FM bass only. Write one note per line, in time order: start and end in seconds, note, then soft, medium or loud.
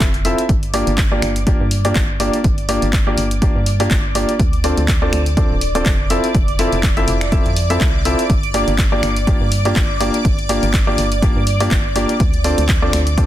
0.00 0.35 F1 loud
0.49 0.84 G1 medium
0.87 1.20 G1 medium
1.22 1.57 G1 medium
1.60 1.93 G2 medium
1.96 2.30 G1 medium
2.44 2.79 G1 medium
2.82 3.15 G1 medium
3.18 3.52 G1 medium
3.56 3.88 G2 medium
3.91 4.25 G1 medium
4.40 4.74 D2 loud
4.77 5.10 D2 medium
5.13 5.47 D2 medium
5.51 5.83 D1 medium
5.86 6.20 F1 medium
6.35 6.69 F1 medium
6.73 7.05 F1 medium
7.08 7.42 F1 medium
7.46 7.78 F2 medium
7.81 8.15 C2 medium
8.30 8.64 G1 loud
8.68 9.00 G1 medium
9.03 9.37 G1 medium
9.41 9.73 G2 medium
9.76 10.11 G1 medium
10.25 10.59 G1 medium
10.63 10.95 G1 medium
10.98 11.33 G1 medium
11.36 11.69 G2 medium
11.71 12.06 G1 medium
12.20 12.55 D2 medium
12.58 12.90 D2 medium
12.93 13.26 D2 medium